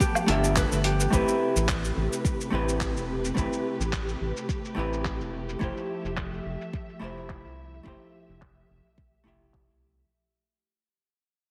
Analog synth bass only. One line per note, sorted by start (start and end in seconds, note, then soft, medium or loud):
0.28 0.65 G1 loud
0.72 1.07 G1 medium
1.13 1.24 A1 medium
1.56 1.91 A1 medium
1.97 2.08 A1 medium
2.53 2.97 A1 loud
2.96 3.31 E1 medium
3.37 3.48 A1 medium
3.80 4.15 A1 medium
4.21 4.32 A1 medium
4.77 5.22 A1 loud
5.20 5.55 E1 medium
5.61 5.72 F1 medium
6.04 6.40 F1 medium
6.45 6.56 F1 loud
7.01 7.46 F1 loud
7.45 7.80 C2 medium
7.86 7.97 F1 medium
8.29 8.64 F1 medium
8.70 8.81 F1 loud
9.26 9.71 F1 medium
9.69 10.04 C2 medium